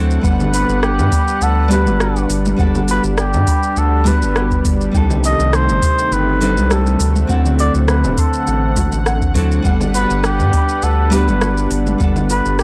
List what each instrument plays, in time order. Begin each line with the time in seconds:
Already playing: analog synth bass D2, analog synth pad D3 A3 C4 F#5, nylon-string guitar F#3 C4 D4 E4 A4
0.11 shaker
0.21 analog synth bass G1, nylon-string guitar G3 B3 D4 F#5, analog synth pad G3 D4 B4, synth pluck F#5, kick, shaker
0.27 nylon-string guitar A4
0.40 low conga, shaker
0.54 synth pluck F#4, muted trumpet B4, open hi-hat, shaker
0.69 analog synth bass G1, shaker
0.83 muted trumpet G4, cross-stick, shaker
0.98 analog synth bass G2, low conga, shaker
1.12 synth pluck B5, kick, open hi-hat, shaker
1.28 shaker
1.41 analog synth bass D2, muted trumpet A4, synth pluck F#5, shaker
1.68 nylon-string guitar G3 B3 D4 F#4, synth pluck G4, open hi-hat, shaker
1.73 muted trumpet B4, nylon-string guitar B4
1.86 analog synth bass G1, high conga, shaker
2.00 synth pluck F#4, cross-stick, shaker
2.16 shaker
2.29 analog synth bass G1, open hi-hat, shaker
2.46 high conga, shaker
2.56 analog synth bass G1, nylon-string guitar G3 B3 D4 F#5, synth pluck F#5, kick, shaker
2.61 nylon-string guitar A4
2.75 low conga, shaker
2.88 synth pluck F#4, muted trumpet B4, open hi-hat, shaker
3.04 analog synth bass G1, shaker
3.18 muted trumpet G4, cross-stick, shaker
3.33 analog synth bass G2, low conga, shaker
3.47 synth pluck B5, kick, open hi-hat, shaker
3.63 shaker
3.77 analog synth bass D2, muted trumpet A4, synth pluck F#5, shaker
4.04 nylon-string guitar G3 B3 D4 F#4, synth pluck G4, muted trumpet B4, kick, open hi-hat, high conga, shaker
4.09 nylon-string guitar B4
4.22 analog synth bass G1, shaker
4.36 synth pluck F#4, cross-stick, shaker
4.51 kick, shaker
4.65 analog synth bass G1, kick, open hi-hat, shaker
4.81 shaker
4.92 analog synth bass C2, analog synth pad C3 D#3 A3, nylon-string guitar G3 C4 D4 D#4, synth pluck G5, kick, shaker
4.97 nylon-string guitar A4
5.10 low conga, shaker
5.24 synth pluck G4, muted trumpet D#5, open hi-hat, shaker
5.40 analog synth bass C2, shaker
5.53 muted trumpet C5, cross-stick, shaker
5.69 analog synth bass G1, low conga, shaker
5.82 synth pluck C6, kick, open hi-hat, shaker
5.98 shaker
6.12 analog synth bass G1, muted trumpet B4, synth pluck G5, shaker
6.40 nylon-string guitar G3 C4 D4 D#4 C5, synth pluck A4, open hi-hat, shaker
6.57 analog synth bass C2, high conga, shaker
6.71 synth pluck G4, muted trumpet A4, cross-stick, shaker
6.86 shaker
7.00 analog synth bass D2, analog synth pad D3 C4 F#5, open hi-hat, shaker
7.16 high conga, shaker
7.27 analog synth bass D2, nylon-string guitar F#3 C4 D4, synth pluck F#5, kick, shaker
7.31 nylon-string guitar E4 A4
7.45 low conga, shaker
7.59 synth pluck F#4, muted trumpet D5, open hi-hat, shaker
7.75 analog synth bass D2, shaker
7.88 muted trumpet B4, cross-stick, shaker
8.04 analog synth bass D1, low conga, shaker
8.18 muted trumpet A4, synth pluck C6, kick, open hi-hat, shaker
8.33 shaker
8.47 analog synth bass A1, synth pluck F#5, shaker
8.76 synth pluck F#4, kick, open hi-hat, high conga, shaker
8.92 analog synth bass A1, shaker
9.06 synth pluck F#5, cross-stick, shaker
9.22 kick, shaker
9.34 analog synth bass D2, nylon-string guitar F#3 C4 D4 E4 A4, kick, open hi-hat, shaker
9.52 shaker
9.62 analog synth bass G1, nylon-string guitar G3 B3 D4 F#5, analog synth pad G3 D4 B4, synth pluck F#5, kick, shaker
9.68 nylon-string guitar A4
9.81 low conga, shaker
9.94 synth pluck F#4, muted trumpet B4, open hi-hat, shaker
10.10 analog synth bass G1, shaker
10.24 muted trumpet G4, cross-stick, shaker
10.40 analog synth bass G2, low conga, shaker
10.53 synth pluck B5, kick, open hi-hat, shaker
10.69 shaker
10.82 analog synth bass D2, muted trumpet A4, synth pluck F#5, shaker
11.10 nylon-string guitar G3 B3 D4 F#4, synth pluck G4, muted trumpet B4, open hi-hat, shaker
11.15 nylon-string guitar B4
11.28 analog synth bass G1, high conga, shaker
11.41 synth pluck F#4, cross-stick, shaker
11.57 shaker
11.71 analog synth bass G1, open hi-hat, shaker
11.87 high conga, shaker
11.98 analog synth bass G1, nylon-string guitar G3 B3 D4, synth pluck F#5, kick, shaker
12.02 nylon-string guitar A4 F#5
12.16 low conga, shaker
12.30 synth pluck F#4, muted trumpet B4, open hi-hat, shaker
12.45 analog synth bass G1, shaker
12.59 muted trumpet G4, cross-stick, shaker